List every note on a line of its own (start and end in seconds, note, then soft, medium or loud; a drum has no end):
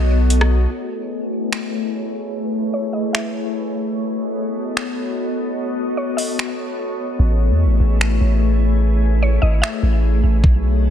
0.00 0.67 B1 loud
0.00 0.67 B3 medium
0.00 0.67 F#4 medium
0.00 0.67 A4 medium
0.00 0.67 C#5 medium
0.00 0.26 D#5 medium
0.00 0.67 D#5 medium
0.30 closed hi-hat medium
0.41 cross-stick loud
0.71 3.92 A3 medium
0.71 3.92 E4 medium
0.71 3.92 G#4 medium
0.71 3.92 B4 medium
0.71 10.40 C#5 medium
1.53 finger snap loud
2.74 2.93 C#5 medium
2.93 3.13 D#5 medium
3.13 3.91 E5 medium
3.13 finger snap loud
3.95 7.16 B3 medium
3.95 7.16 F#4 medium
3.95 7.16 A4 medium
3.95 7.16 D#5 medium
4.77 finger snap loud
5.97 6.17 C#5 medium
6.17 6.75 D#5 medium
6.17 open hi-hat medium
6.39 finger snap loud
7.19 7.51 A1 loud
7.19 10.40 A3 medium
7.19 10.40 E4 medium
7.19 10.40 G#4 medium
7.19 10.40 B4 medium
7.50 7.67 E2 loud
7.65 7.79 A1 loud
7.80 8.19 A1 loud
8.01 finger snap loud
8.21 9.38 A1 loud
9.23 9.42 C#5 medium
9.42 9.62 G#1 loud
9.42 9.61 D#5 medium
9.62 10.39 E5 medium
9.62 finger snap loud
9.83 10.22 A1 loud
10.23 10.43 A1 loud
10.44 10.90 B1 loud
10.44 10.90 B3 medium
10.44 10.90 F#4 medium
10.44 10.90 A4 medium
10.44 10.90 C#5 medium
10.44 10.90 D#5 medium
10.44 kick loud